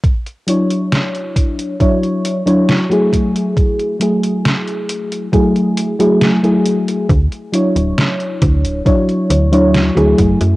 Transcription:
<<
  \new Staff \with { instrumentName = "FM electric piano" } { \time 4/4 \key d \lydian \tempo 4 = 68 r8 <fis d' e' cis''>4. <fis d' e' cis''>8. <fis d' e' cis''>8 <fis a e' gis'>8.~ | <fis a e' gis'>8 <fis a e' gis'>4. <fis a e' gis'>8. <fis a e' gis'>8 <fis a e' gis'>8. | r8 <fis d' e' cis''>4. <fis d' e' cis''>8. <fis d' e' cis''>8 <fis a e' gis'>8. | }
  \new Staff \with { instrumentName = "FM bass" } { \clef bass \time 4/4 \key d \lydian r1 | r1 | d,16 r8 d,,16 r8 d,16 d,,16 r8 d,8. d,16 fis,,16 fis,16 | }
  \new DrumStaff \with { instrumentName = "Drums" } \drummode { \time 4/4 <hh bd>16 hh16 hh16 hh16 <hh sn>16 hh16 <hh bd>16 hh16 <hh bd>16 hh16 hh16 hh16 <hh sn>16 hh16 <hh bd>16 hh16 | <hh bd>16 hh16 hh16 hh16 <hh sn>16 hh16 hh16 hh16 <hh bd>16 hh16 hh16 hh16 <hh sn>16 hh16 hh16 hh16 | <hh bd>16 hh16 hh16 hh16 <hh sn>16 hh16 <hh bd>16 hh16 <hh bd>16 hh16 hh16 hh16 <hh sn>16 hh16 <hh bd>16 hh16 | }
>>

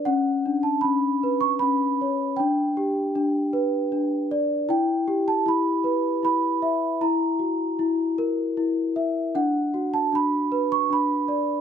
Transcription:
\new Staff \with { instrumentName = "Celesta" } { \time 3/4 \key b \minor \tempo 4 = 77 << { fis''8. a''16 b''8. cis'''16 b''4 | g''2~ g''8 r8 | g''8. a''16 b''4 b''4 | ais''4. r4. |
fis''8. a''16 b''8. cis'''16 b''4 | } \\ { cis'8 d'8 cis'8 b'8 cis'8 cis''8 | d'8 g'8 d'8 b'8 d'8 d''8 | e'8 g'8 e'8 b'8 e'8 e''8 | e'8 fis'8 e'8 ais'8 e'8 e''8 |
d'8 fis'8 d'8 b'8 d'8 d''8 | } >> }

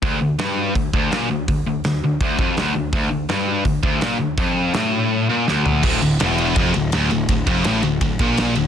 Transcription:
<<
  \new Staff \with { instrumentName = "Distorted electric guitar" } { \clef bass \time 4/4 \key d \minor \tempo 4 = 165 d,8 d,8 g,4 d,8 d,8 bes,8 d,8 | d,8 d,8 d,8 d,8 d,8 f,8 d,8 d,8 | d,8 d,8 g,4 d,8 d,8 bes,8 d,8 | f,4 a,4. bes,8 d,4 |
d,8 d,8 e,4 f,8 d,8 d,8 d,8 | d,8 f,8 a,8 d,8 d,8 bes,4 d,8 | }
  \new Staff \with { instrumentName = "Distorted electric guitar" } { \clef bass \time 4/4 \key d \minor d,8 d,8 g,4 d,8 d,8 bes,8 d,8 | d,8 d,8 d,8 d,8 d,8 f,8 d,8 d,8 | d,8 d,8 g,4 d,8 d,8 bes,8 d,8 | f,4 a,4. bes,8 d,4 |
d,8 d,8 e,4 f,8 d,8 d,8 d,8 | d,8 f,8 a,8 d,8 d,8 bes,4 d,8 | }
  \new Staff \with { instrumentName = "Distorted electric guitar" } { \clef bass \time 4/4 \key d \minor r1 | r1 | r1 | r1 |
d,8 d,8 e,4 f,8 d,8 d,8 d,8 | d,8 f,8 a,8 d,8 d,8 bes,4 d,8 | }
  \new Staff \with { instrumentName = "Picked electric bass" } { \clef bass \time 4/4 \key d \minor r1 | r1 | r1 | r1 |
d,,8 d,,8 e,,4 f,,8 d,,8 d,,8 d,,8 | d,,8 f,,8 a,,8 d,,8 d,,8 bes,,4 d,,8 | }
  \new DrumStaff \with { instrumentName = "Drums" } \drummode { \time 4/4 <hho bd>4 <hho sn>4 <hho bd>8 bd8 <hho sn>16 sn8. | <hho bd>4 <hho sn>4 <hho bd>8 bd8 <hho sn>4 | <hho bd>4 <hho sn>4 <hho bd>8 bd8 <hho sn>16 sn8. | <hho bd>4 <hho sn>4 r4 sn8 tomfh8 |
<cymc bd>8 cymr8 <cymr sn>8 cymr8 <bd cymr>8 cymr8 <cymr sn>8 cymr8 | <bd cymr>8 <bd cymr>8 <cymr sn>8 cymr8 <bd cymr>8 <bd cymr>8 <cymr sn>8 cymr8 | }
>>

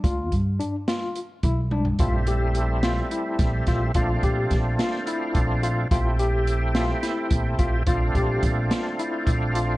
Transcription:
<<
  \new Staff \with { instrumentName = "Tine electric piano" } { \time 7/8 \key bes \lydian \tempo 4 = 107 f'4 d'8 f'4 e'8 d'8 | f'8 g'4 f'8 e'4 f'8 | f'8 g'4 f'8 e'4 f'8 | f'8 g'4 f'8 e'4 f'8 |
f'8 g'4 f'8 e'4 f'8 | }
  \new Staff \with { instrumentName = "Tonewheel organ" } { \time 7/8 \key bes \lydian r2. r8 | <g a c' e'>2.~ <g a c' e'>8 | <a c' d' f'>2.~ <a c' d' f'>8 | <a c' e' g'>2.~ <a c' e' g'>8 |
<a c' d' f'>2.~ <a c' d' f'>8 | }
  \new Staff \with { instrumentName = "Upright bass" } { \clef bass \time 7/8 \key bes \lydian d,8 g,8 r4. ces,4 | bes,,2 r8 bes,,8 bes,,8 | bes,,8 bes,,8 bes,,8 r4 bes,,4 | bes,,2 r8 bes,,8 bes,,8 |
bes,,8 bes,,8 bes,,8 r4 bes,,4 | }
  \new DrumStaff \with { instrumentName = "Drums" } \drummode { \time 7/8 <hh bd>8 <hh bd>8 hh8 <hh sn>8 hh8 <hh bd>8 tommh16 tomfh16 | <hh bd>8 hh8 hh8 <hh sn>8 hh8 <hh bd sn>8 <hh bd sn>8 | <hh bd>8 <hh bd>8 <hh bd sn>8 <hh sn>8 hh8 <hh bd>8 hh8 | <hh bd>8 hh8 hh8 <hh sn>8 <hh sn>8 <hh bd>8 <hh bd>8 |
<hh bd>8 <hh bd>8 <hh bd>8 <hh sn>8 hh8 <hh bd>8 hh8 | }
>>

